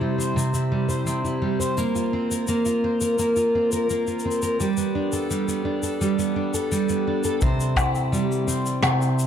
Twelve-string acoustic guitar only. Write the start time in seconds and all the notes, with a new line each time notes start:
Already playing: C3 E4 C5
0.01 G3
0.18 C5
0.36 C3
0.54 E4
0.72 G3
0.88 C5
1.07 C3
1.24 E4
1.42 G3
1.60 C5
1.78 A#3
1.96 F4
2.13 C4
2.31 A#4
2.48 A#3
2.66 F4
2.84 C4
3.01 A#4
3.19 A#3
3.36 F4
3.55 C4
3.73 A#4
3.90 A#3
4.08 F4
4.25 C4
4.43 A#4
4.60 G3
4.78 B3
4.95 D4
5.13 A4
5.30 G3
5.48 B3
5.65 D4
5.83 A4
6.01 G3
6.19 B3
6.36 D4
6.54 A4
6.72 G3
6.90 B3
7.07 D4
7.25 A4
7.42 C3 C5
7.77 E4
8.12 G3
8.47 C4
8.83 C3